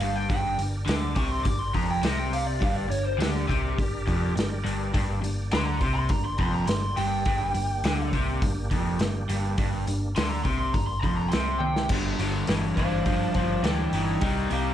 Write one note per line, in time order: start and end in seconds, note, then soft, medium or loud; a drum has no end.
0.00 0.27 G1 medium
0.00 0.28 G2 medium
0.00 0.26 A#3 medium
0.00 0.26 D4 medium
0.00 0.26 G4 medium
0.00 0.26 D5 medium
0.00 0.16 F5 medium
0.00 open hi-hat medium
0.16 0.29 G5 loud
0.29 0.57 G1 medium
0.29 0.58 G2 medium
0.29 0.50 D#4 medium
0.29 0.49 G#4 medium
0.29 0.49 B4 medium
0.29 0.49 D#5 medium
0.29 0.58 G5 loud
0.29 kick loud
0.29 open hi-hat medium
0.48 2.60 D4 medium
0.48 2.60 G4 medium
0.48 2.60 A#4 medium
0.48 2.60 D5 medium
0.59 0.86 G1 medium
0.59 0.82 G2 medium
0.59 open hi-hat medium
0.86 1.15 D2 loud
0.86 1.15 D3 medium
0.86 1.16 D6 loud
0.86 snare loud
0.86 open hi-hat medium
1.16 1.43 C2 medium
1.16 1.45 C3 medium
1.16 1.31 C#6 medium
1.16 kick medium
1.16 open hi-hat medium
1.31 1.43 C6 medium
1.44 1.73 G1 medium
1.44 1.69 G2 medium
1.44 1.59 D6 medium
1.44 kick loud
1.44 open hi-hat medium
1.59 1.74 C6 medium
1.74 2.02 F1 medium
1.74 2.03 F2 medium
1.74 1.90 A#5 medium
1.74 kick medium
1.74 open hi-hat medium
1.90 2.06 G5 medium
2.03 2.58 C2 medium
2.03 2.60 C3 loud
2.03 2.19 A#5 medium
2.03 snare loud
2.03 open hi-hat medium
2.19 2.33 G5 medium
2.33 2.46 F5 loud
2.33 open hi-hat medium
2.46 2.61 D5 medium
2.60 2.89 G1 loud
2.60 2.87 G2 loud
2.60 4.93 D4 medium
2.60 4.92 G4 medium
2.60 4.92 A#4 medium
2.60 4.92 D5 medium
2.60 2.76 F5 medium
2.60 kick loud
2.60 open hi-hat medium
2.76 2.90 D5 medium
2.88 3.18 G1 medium
2.88 3.13 G2 medium
2.88 3.05 C#5 medium
2.88 open hi-hat medium
3.05 3.19 C5 medium
3.18 3.46 D2 loud
3.18 3.47 D3 medium
3.18 4.32 G4 loud
3.18 open hi-hat medium
3.22 snare loud
3.48 3.76 C2 medium
3.48 3.77 C3 medium
3.48 kick medium
3.48 open hi-hat medium
3.78 4.05 G1 medium
3.78 4.01 G2 medium
3.78 kick loud
3.78 open hi-hat medium
4.07 4.34 F1 medium
4.07 4.35 F2 loud
4.07 kick medium
4.07 open hi-hat medium
4.36 4.63 G1 medium
4.36 4.59 G2 medium
4.36 snare loud
4.36 open hi-hat medium
4.64 4.92 G1 medium
4.64 4.92 G2 medium
4.64 open hi-hat medium
4.94 5.21 G1 medium
4.94 5.21 G2 loud
4.94 7.24 A#3 medium
4.94 7.24 D4 medium
4.94 7.24 G4 medium
4.94 7.24 D5 medium
4.94 kick loud
4.94 open hi-hat medium
5.22 5.50 G1 medium
5.22 5.46 G2 medium
5.22 open hi-hat medium
5.51 5.79 D2 loud
5.51 5.80 D3 loud
5.51 5.65 C6 loud
5.51 snare loud
5.51 open hi-hat medium
5.65 5.79 A#5 loud
5.79 6.08 C2 medium
5.79 6.10 C3 loud
5.79 5.93 C6 medium
5.79 kick medium
5.79 open hi-hat medium
5.94 6.09 C6 medium
6.09 6.37 G1 medium
6.09 6.34 G2 medium
6.09 6.24 A#5 medium
6.09 kick loud
6.09 open hi-hat medium
6.25 6.38 C6 medium
6.38 6.66 F1 loud
6.38 6.67 F2 loud
6.38 6.53 C6 loud
6.38 kick medium
6.38 open hi-hat medium
6.54 6.67 A#5 medium
6.67 6.95 G1 medium
6.67 6.91 G2 medium
6.67 6.96 C6 medium
6.67 snare loud
6.67 open hi-hat medium
6.96 7.24 G1 medium
6.96 7.25 G2 medium
6.96 8.09 G5 loud
6.96 open hi-hat medium
7.25 7.53 G1 loud
7.25 7.53 G2 loud
7.25 7.46 B3 medium
7.25 7.46 D#4 medium
7.25 7.46 G#4 medium
7.25 kick loud
7.25 open hi-hat medium
7.46 9.56 A#3 medium
7.46 9.57 D4 medium
7.46 9.57 G4 medium
7.54 7.82 G1 medium
7.54 7.78 G2 medium
7.54 open hi-hat medium
7.84 8.11 D2 loud
7.84 8.13 D3 loud
7.84 snare loud
7.84 open hi-hat medium
8.13 8.40 C2 medium
8.13 8.42 C3 loud
8.13 kick medium
8.13 open hi-hat medium
8.42 8.69 G1 medium
8.42 8.66 G2 medium
8.42 kick loud
8.42 open hi-hat medium
8.71 8.98 F1 medium
8.71 8.99 F2 loud
8.71 kick medium
8.71 open hi-hat medium
8.99 9.27 G1 medium
8.99 9.24 G2 medium
8.99 snare loud
8.99 open hi-hat medium
9.29 9.56 G1 medium
9.29 9.57 G2 loud
9.29 open hi-hat medium
9.58 9.85 G1 loud
9.58 9.86 G2 loud
9.58 11.88 G3 medium
9.58 11.89 A#3 medium
9.58 11.89 D4 medium
9.58 kick loud
9.58 open hi-hat medium
9.87 10.14 G1 medium
9.87 10.10 G2 medium
9.87 open hi-hat medium
10.16 10.43 D2 loud
10.16 10.44 D3 loud
10.16 10.30 C6 loud
10.16 snare loud
10.16 open hi-hat medium
10.30 10.44 A#5 loud
10.44 10.72 C2 medium
10.44 10.73 C3 loud
10.44 10.57 C6 medium
10.44 kick medium
10.44 open hi-hat medium
10.58 10.74 C6 medium
10.74 11.01 G1 medium
10.74 10.98 G2 medium
10.74 10.86 A#5 medium
10.74 kick loud
10.74 open hi-hat medium
10.87 11.00 C6 medium
11.01 11.30 F1 medium
11.01 11.32 F2 loud
11.01 11.16 C6 loud
11.01 kick medium
11.01 open hi-hat soft
11.17 11.29 A#5 medium
11.29 11.87 C2 medium
11.29 11.90 C3 loud
11.29 11.59 C6 loud
11.29 snare loud
11.29 open hi-hat medium
11.59 11.88 G5 loud
11.59 high tom medium
11.76 snare medium
11.89 12.13 G1 loud
11.89 12.17 G2 medium
11.89 12.17 D3 medium
11.89 14.21 A#3 medium
11.89 14.21 F4 medium
11.89 14.21 G4 medium
11.89 14.21 D5 medium
11.89 kick loud
11.89 crash loud
12.19 12.42 G1 medium
12.19 12.46 G2 medium
12.19 12.46 D3 medium
12.19 open hi-hat medium
12.47 12.71 G1 medium
12.47 12.74 G2 medium
12.47 12.75 E3 medium
12.47 snare loud
12.47 open hi-hat medium
12.76 13.00 G1 medium
12.76 13.04 G2 medium
12.76 13.04 E3 medium
12.76 13.07 D4 medium
12.76 13.03 C5 medium
12.76 13.03 F5 medium
12.76 kick medium
12.76 open hi-hat medium
13.04 13.28 G1 medium
13.04 13.32 G2 medium
13.04 13.33 F3 loud
13.04 13.31 C5 medium
13.04 13.33 F5 medium
13.04 kick loud
13.04 open hi-hat medium
13.09 13.35 D4 medium
13.32 13.58 G1 medium
13.32 13.62 G2 medium
13.32 13.62 F3 medium
13.32 13.61 C5 medium
13.32 13.63 F5 medium
13.32 kick medium
13.32 open hi-hat soft
13.38 13.63 D4 medium
13.63 13.86 D2 medium
13.63 13.90 G2 medium
13.63 13.91 E3 medium
13.63 13.92 D4 medium
13.63 13.91 D5 medium
13.63 13.91 G5 medium
13.63 snare loud
13.63 open hi-hat medium
13.92 14.16 G1 medium
13.92 14.20 G2 medium
13.92 14.20 E3 medium
13.92 14.21 D#4 medium
13.92 14.20 D5 medium
13.92 14.21 G5 medium
13.92 open hi-hat medium
14.21 14.45 C2 medium
14.21 14.48 C3 medium
14.21 14.49 G3 medium
14.21 14.43 B3 medium
14.21 14.50 D#4 medium
14.21 14.43 E4 medium
14.21 14.43 G#4 medium
14.21 14.43 C#5 medium
14.21 14.50 D#5 medium
14.21 14.51 G5 medium
14.21 kick loud
14.21 open hi-hat medium
14.45 14.74 A#3 medium
14.45 14.74 D#4 medium
14.45 14.74 G4 medium
14.45 14.74 C5 medium
14.50 14.74 C2 medium
14.50 14.74 C3 medium
14.50 14.74 G3 medium
14.50 14.74 G4 medium
14.50 14.74 F5 medium
14.50 14.74 A#5 medium
14.50 open hi-hat medium